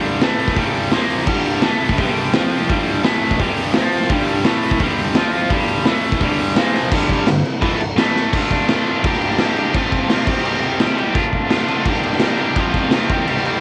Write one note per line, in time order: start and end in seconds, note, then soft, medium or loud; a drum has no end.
0.00 0.22 G2 loud
0.00 0.21 D3 loud
0.00 0.22 G3 loud
0.05 open hi-hat medium
0.22 0.57 A2 loud
0.22 0.58 E3 loud
0.22 0.58 A3 loud
0.22 snare loud
0.22 open hi-hat medium
0.40 open hi-hat medium
0.48 kick medium
0.48 snare soft
0.57 0.92 G2 loud
0.57 0.92 D3 loud
0.57 0.93 G3 loud
0.57 kick loud
0.57 open hi-hat medium
0.75 open hi-hat medium
0.92 1.27 A#2 medium
0.92 1.28 F3 loud
0.92 1.29 A#3 loud
0.92 snare loud
0.92 open hi-hat medium
1.10 open hi-hat medium
1.18 snare soft
1.27 1.63 G2 loud
1.27 1.62 D3 loud
1.27 1.63 G3 loud
1.27 kick loud
1.27 crash loud
1.45 open hi-hat medium
1.62 1.98 A2 loud
1.62 1.99 E3 loud
1.62 1.99 A3 loud
1.62 snare loud
1.62 open hi-hat medium
1.80 open hi-hat medium
1.89 kick medium
1.89 snare soft
1.98 2.33 G2 loud
1.98 2.33 D3 loud
1.98 2.34 G3 loud
1.98 kick loud
1.98 open hi-hat medium
2.16 open hi-hat medium
2.33 2.68 F3 loud
2.33 2.69 C4 loud
2.33 2.69 F4 loud
2.33 snare loud
2.33 open hi-hat medium
2.52 open hi-hat medium
2.61 snare soft
2.68 3.04 G2 loud
2.68 3.03 D3 loud
2.68 3.03 G3 loud
2.68 kick loud
2.68 open hi-hat medium
2.88 open hi-hat medium
3.03 3.39 A2 medium
3.03 3.39 E3 loud
3.03 3.39 A3 loud
3.03 snare loud
3.03 open hi-hat medium
3.22 open hi-hat medium
3.30 kick medium
3.30 snare soft
3.39 3.74 G2 medium
3.39 3.75 D3 loud
3.39 3.75 G3 loud
3.39 kick medium
3.39 open hi-hat medium
3.57 open hi-hat medium
3.74 4.10 F3 loud
3.74 4.10 C4 loud
3.74 4.11 F4 loud
3.74 snare loud
3.74 open hi-hat medium
3.92 open hi-hat medium
4.01 snare soft
4.09 4.45 G2 loud
4.09 4.45 D3 loud
4.09 4.46 G3 loud
4.09 kick loud
4.09 open hi-hat medium
4.28 open hi-hat medium
4.45 4.80 A2 loud
4.45 4.81 E3 loud
4.45 4.81 A3 loud
4.45 snare loud
4.45 open hi-hat medium
4.62 open hi-hat medium
4.71 kick medium
4.71 snare soft
4.80 5.16 G2 loud
4.80 5.16 D3 loud
4.80 5.16 G3 loud
4.80 kick medium
4.80 open hi-hat medium
4.98 open hi-hat medium
5.15 5.50 F3 loud
5.15 5.51 C4 loud
5.15 5.52 F4 loud
5.15 snare loud
5.15 open hi-hat medium
5.32 open hi-hat medium
5.49 5.85 G2 loud
5.49 5.84 D3 loud
5.49 5.85 G3 loud
5.49 kick loud
5.49 open hi-hat medium
5.68 open hi-hat medium
5.85 6.20 A2 medium
5.85 6.21 E3 medium
5.85 6.22 A3 loud
5.85 snare loud
5.85 open hi-hat medium
6.03 open hi-hat medium
6.12 kick medium
6.12 snare soft
6.20 6.56 G2 loud
6.20 6.56 D3 loud
6.20 6.57 G3 loud
6.20 kick loud
6.20 open hi-hat medium
6.39 open hi-hat medium
6.56 6.91 A#2 loud
6.56 6.92 F3 loud
6.56 6.93 A#3 loud
6.56 snare loud
6.56 open hi-hat medium
6.74 snare medium
6.91 7.26 G2 medium
6.91 7.27 D3 loud
6.91 7.28 G3 loud
6.91 kick loud
6.91 crash loud
7.09 kick medium
7.09 crash medium
7.27 7.41 G2 medium
7.27 7.42 D3 medium
7.27 snare loud
7.27 crash medium
7.45 crash medium
7.62 7.80 A2 loud
7.62 7.80 E3 loud
7.62 7.81 A3 loud
7.62 kick loud
7.62 crash loud
7.81 crash medium
7.97 8.32 A2 medium
7.97 8.32 E3 loud
7.97 8.33 A3 loud
7.97 snare loud
7.97 crash medium
8.16 snare medium
8.33 8.66 D3 loud
8.33 8.68 A3 loud
8.33 8.69 D4 loud
8.33 8.69 F4 loud
8.33 kick loud
8.33 crash loud
8.33 crash medium
8.51 kick medium
8.51 crash medium
8.68 8.85 D3 medium
8.68 8.86 A3 medium
8.68 8.87 D4 loud
8.68 8.88 F4 loud
8.68 snare loud
8.68 crash medium
8.86 9.03 D3 medium
8.86 9.03 A3 medium
8.86 9.04 D4 medium
8.86 9.04 F4 loud
8.86 crash medium
9.03 9.37 G2 loud
9.03 9.38 D3 medium
9.03 9.38 G3 loud
9.03 9.40 A#3 loud
9.03 9.41 D4 loud
9.03 9.41 G4 loud
9.03 kick loud
9.03 crash medium
9.13 snare soft
9.21 crash medium
9.30 snare soft
9.38 9.54 G2 medium
9.38 9.55 D3 medium
9.38 9.56 G3 medium
9.38 9.57 A#3 medium
9.38 9.57 D4 loud
9.38 9.58 G4 loud
9.38 snare loud
9.38 crash medium
9.55 9.72 G2 medium
9.55 9.73 D3 medium
9.55 9.73 G3 medium
9.55 9.74 A#3 medium
9.55 9.74 D4 medium
9.55 crash medium
9.59 9.75 G4 medium
9.74 10.07 F2 medium
9.74 10.09 C3 medium
9.74 10.09 F3 loud
9.74 10.10 A3 loud
9.74 10.11 C4 loud
9.74 10.11 F4 loud
9.74 kick loud
9.74 crash medium
9.92 kick medium
9.92 crash medium
10.09 10.26 F2 medium
10.09 10.25 C3 medium
10.09 10.27 F3 medium
10.09 10.27 A3 medium
10.09 10.27 C4 loud
10.09 10.28 F4 medium
10.09 snare loud
10.09 crash medium
10.26 10.41 C3 loud
10.26 10.42 D#3 medium
10.26 10.43 G3 loud
10.26 10.44 C4 loud
10.26 10.44 G4 loud
10.26 kick loud
10.26 crash loud
10.43 10.77 C3 medium
10.43 10.79 D#3 loud
10.43 10.79 G3 loud
10.43 10.80 C4 loud
10.43 10.81 G4 loud
10.43 crash medium
10.54 snare soft
10.63 crash medium
10.78 10.94 C3 loud
10.78 10.95 D#3 medium
10.78 10.96 G3 medium
10.78 10.97 C4 medium
10.78 10.98 G4 medium
10.78 snare loud
10.78 crash medium
10.96 11.14 C3 medium
10.96 11.13 D#3 medium
10.96 11.15 G3 loud
10.96 11.15 C4 medium
10.96 11.15 G4 loud
10.96 crash medium
11.14 11.48 D3 medium
11.14 11.49 A3 medium
11.14 11.49 D4 loud
11.14 11.50 F4 loud
11.14 kick loud
11.14 crash medium
11.33 kick medium
11.33 crash medium
11.49 11.66 D3 medium
11.49 11.67 A3 medium
11.49 11.68 D4 medium
11.49 11.68 F4 medium
11.49 snare loud
11.49 crash medium
11.67 11.85 D3 medium
11.67 11.85 A3 medium
11.67 11.86 D4 medium
11.67 11.86 F4 loud
11.67 crash medium
11.85 12.20 G2 medium
11.85 12.22 D3 loud
11.85 12.22 G3 loud
11.85 12.23 A#3 loud
11.85 12.23 D4 loud
11.85 12.24 G4 loud
11.85 kick loud
11.85 crash medium
11.94 snare soft
12.03 crash medium
12.12 snare soft
12.20 12.38 G2 medium
12.20 12.39 D3 medium
12.20 12.40 G3 medium
12.20 snare loud
12.20 crash medium
12.24 12.40 A#3 medium
12.24 12.41 D4 loud
12.24 12.42 G4 loud
12.38 12.56 G2 medium
12.38 12.57 D3 medium
12.38 12.57 G3 medium
12.38 12.57 A#3 medium
12.38 crash medium
12.42 12.58 D4 medium
12.42 12.58 G4 loud
12.55 12.91 F2 loud
12.55 12.92 C3 medium
12.55 12.93 F3 loud
12.55 12.94 A3 loud
12.55 kick loud
12.55 crash medium
12.60 12.94 C4 loud
12.60 12.95 F4 loud
12.74 kick medium
12.74 crash medium
12.91 13.09 F2 medium
12.91 13.08 C3 medium
12.91 13.10 F3 medium
12.91 snare loud
12.91 crash medium
12.95 13.10 A3 medium
12.95 13.11 C4 loud
12.95 13.11 F4 loud
13.09 13.27 C3 loud
13.09 13.28 D#3 medium
13.09 13.29 G3 medium
13.09 13.29 C4 medium
13.09 13.30 G4 loud
13.09 kick loud
13.09 crash medium
13.27 13.60 C3 loud
13.27 13.60 D#3 loud
13.27 13.60 G3 loud
13.27 13.60 C4 loud
13.27 13.60 G4 loud
13.27 crash medium
13.37 snare soft
13.45 crash medium
13.55 snare soft